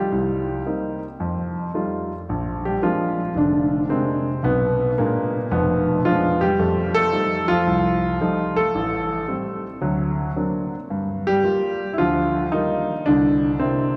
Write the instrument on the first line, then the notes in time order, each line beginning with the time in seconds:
grand piano
Already playing: G3 G4
0.12 C2
0.66 A#3 C4 D#4
1.20 F2
1.74 G3 A3 D#4 F4
2.29 A#1
2.65 G3 G4
2.82 F3 G#3 A#3 C4 D4 F4
3.35 F1 D3 D4
3.89 C3 G#3 A#3 C4 D4
4.43 B1 B2 B3
4.98 A#2 G#3 A#3 B3 D4
5.51 F1 F2 B2 B3
6.05 F3 G#3 B3 D4 F4
6.41 G3 G4
6.59 F2 A3
6.95 A3 A4
7.13 F3 G3 A3 D#4
7.48 F3 F4
7.67 C2
8.20 F3 G3 A3 D#4
8.56 A3 A4
8.75 A1
9.28 G3 A3 C4
9.81 D2 F#3
10.36 F#3 A#3 C4 D4
10.90 G2
11.27 G3 G4
11.44 G3 A#3 F4
11.93 E4
11.98 D2 D3 F3 F4
12.52 D#3 G3 A#3 D#4 F4
13.06 C2 D3 D4
13.59 C3 A#3 C4 D4 E4